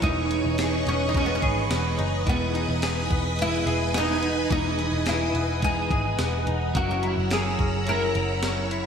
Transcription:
Already playing: C#4 E4 C#5 C#6
0.01 E1 E3 G#3 B3 D#4 G#4 B4 D#5, kick, closed hi-hat
0.29 D#4 G#4, closed hi-hat
0.33 B3
0.45 E1
0.58 G#4, snare, closed hi-hat, tambourine
0.86 E1 B3 C#4, closed hi-hat
1.09 G#3 D#4
1.14 B3 C#4 D#4, kick, closed hi-hat
1.20 G#4
1.26 B3
1.35 C#4 B5
1.42 G#1 G#4, kick, closed hi-hat
1.70 E1 B3, snare, closed hi-hat, tambourine
1.81 G#5
1.98 F#1 D#4, closed hi-hat
2.26 E1 E3 G#3 B3 D#4 G#4 D#5 G#5 D#6, kick, closed hi-hat
2.53 D#4 G#4, closed hi-hat
2.57 B3
2.69 E1
2.82 G#4, snare, closed hi-hat, tambourine
3.10 E1 B3, kick, closed hi-hat
3.36 G#3 B3, closed hi-hat
3.42 E4 G#4
3.66 E1 G#4, closed hi-hat
3.94 B3 D#4, snare, closed hi-hat, tambourine
4.23 D#4, closed hi-hat
4.49 E1 E3 G#3 B3 D#4 G#4, kick, closed hi-hat
4.77 G#4, closed hi-hat
4.92 E1
5.06 E4 G#4, snare, closed hi-hat, tambourine
5.34 E1 B3, closed hi-hat
5.60 G#3 B3 D#4, kick, closed hi-hat
5.64 D#4 G#4
5.68 G#4
5.91 G#1 G#4, kick, closed hi-hat
6.19 E1 B3, snare, closed hi-hat, tambourine
6.47 E1 D#4 F#5, closed hi-hat
6.74 F#1 F#3 C#4 E4 F#4 A#4 C#5 F#5 A#5 E6, kick, closed hi-hat
6.91 F#4
7.02 E4 A#4, closed hi-hat
7.06 C#4
7.17 F#1
7.31 G#4 A#4, snare, closed hi-hat, tambourine
7.59 F#1 C#4, kick, closed hi-hat
7.84 F#3 C#4, closed hi-hat
7.88 E4 A#4
7.93 A#4
8.15 F#1 A#4, closed hi-hat
8.26 F#5
8.43 C#4, snare, closed hi-hat, tambourine
8.71 E4, closed hi-hat

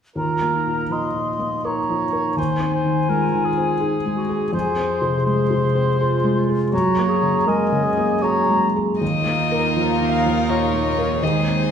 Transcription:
0.15 D#2 F4 A#4 A#5
0.41 A#3
0.55 D#4
0.66 A#2
0.89 F3 D#5 C6
1.15 A#2
1.39 A#3
1.64 D#4 A#4 C#5 A#5
1.89 F3
2.12 A#4
2.36 D#2 C5 G#5
2.60 C4
2.74 C5
2.85 D#3
3.09 G#3 F4 A#4
3.34 D#3
3.45 G#4
3.58 C4
3.80 D#4 G#4
4.05 G#3
4.17 F#4
4.29 G#4
4.53 F2 G#4 C5 G#5
4.76 C4
4.90 C6
5.02 C3
5.26 G#3 C5
5.50 C3
5.75 C4
5.98 F4 G#4
6.24 G#3
6.35 F4
6.49 G#4
6.71 F#2 F#4 C#5 A#5
6.99 A#3
7.09 G#4
7.23 C#3
7.46 G#3 A#4 D#5 G#5
7.72 C#3
7.84 G#4
7.97 A#3
8.22 F#4 G#4 C#5 A#5
8.50 G#3
8.76 G#4
9.00 D#2 A#3 D#4 F4 A#4 D#5
9.26 A#3
9.51 A#4
9.76 F3
10.01 D#3
10.13 F5
10.26 F3
10.49 A#2 C#5
10.74 A#3
10.98 A#4
11.22 D#2 G#3 G#4 C5 D#5
11.48 C4

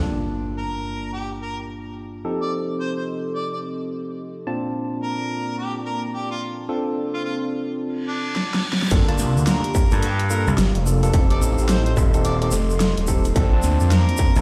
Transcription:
0.02 G2 A#3 D4 F4 G4 D5 A5, impact
0.58 A#4
1.13 G4
1.42 A#4
2.24 F3 C4 D#4 G4 A4 D#5
2.42 D5
2.80 C5
2.97 C5
3.35 D5
3.53 D5
4.47 A#2 A#3 C4 D4 F4 D5 A5
5.03 A#4
5.58 G4
5.85 A#4
6.14 G4
6.31 F4
6.69 C4 D4 F4 A4
7.14 F4
7.25 F4
7.80 reverse cymbal
8.08 D4
8.36 snare
8.54 snare
8.73 snare
8.82 snare
8.88 G1 A#3 D4 F4 G4 A4 D5 F5, kick, snare, closed hi-hat, crash, shaker
8.94 snare
9.08 A#3 D4 F4 A5, closed hi-hat
9.18 C2, snare, shaker
9.36 D2, shaker
9.47 A#4, snare, closed hi-hat, shaker
9.64 closed hi-hat
9.75 kick, shaker
9.91 G2 A#3 D4 F4 A4, closed hi-hat, shaker
10.02 G4, closed hi-hat, shaker
10.19 closed hi-hat
10.30 A#3 D4 F4 A4 A#4, shaker
10.47 C2, shaker
10.58 G1, snare, closed hi-hat, shaker
10.75 F1, closed hi-hat
10.86 A#3 D4 F4 A4, shaker
11.03 A#3 D4 F4 A4, closed hi-hat, shaker
11.13 F1 C4 D#4 G4 A4 D#5 C6, kick, closed hi-hat, shaker
11.30 C4 D#4 G4 A4 D5, closed hi-hat
11.41 A1, snare, shaker
11.58 A1, shaker
11.69 C5, snare, closed hi-hat, shaker
11.86 C5, closed hi-hat
11.97 D#1, kick, shaker
12.14 C4 D#4 G4 A4, closed hi-hat, shaker
12.24 D5, closed hi-hat, shaker
12.42 C4 D#4 G4 A4 D5, closed hi-hat
12.51 F1, snare, shaker
12.70 shaker
12.80 snare, closed hi-hat, shaker
12.97 D#1, closed hi-hat
13.07 C4 D#4 G4 A4, kick, shaker
13.25 closed hi-hat, shaker
13.35 A#1 A#3 C4 D4 F4 A4 F5 A5 D6, kick, closed hi-hat, shaker
13.53 C4 D4 F4 A5
13.62 D2, snare, shaker
13.80 F2, shaker
13.91 A#4, snare, closed hi-hat, shaker
14.09 closed hi-hat
14.17 kick, shaker
14.35 A#1 C4 D4 F4 A4, closed hi-hat, shaker

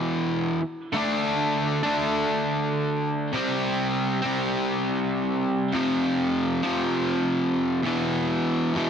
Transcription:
Already playing: E2 B2 E3
0.93 D3 A3 D4
1.83 D3 A3 D4
3.33 C3 G3 C4
4.22 C3 G3 C4
5.72 F2 C3 F3
6.63 F2 C3 F3
7.83 E2 B2 E3
8.74 E2 B2 E3

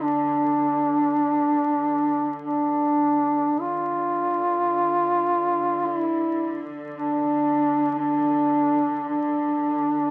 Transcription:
Already playing: D3
0.02 D4
2.44 D4
3.58 D3 F4
5.86 E4
6.93 D4
7.99 D4
9.08 D4

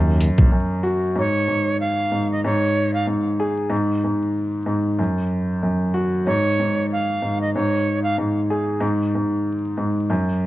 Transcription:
Already playing: D#2 F#2
0.20 closed hi-hat
0.38 A#1, kick
0.52 F#2
0.83 F#4
1.16 G#2 C#5
1.48 G#2
1.80 F5
2.11 G#2
2.32 D#5
2.44 G#2 C#5
2.94 F5
3.07 G#2
3.40 G#4
3.70 G#2
4.04 G#2
4.66 G#2
4.99 F#2
5.63 F#2
5.94 F#4
6.26 G#2 C#5
6.59 G#2
6.92 F5
7.22 G#2
7.41 D#5
7.54 G#2 C#5
8.03 F5
8.17 G#2
8.50 G#4
8.80 G#2
9.15 G#2
9.77 G#2
10.10 F#2

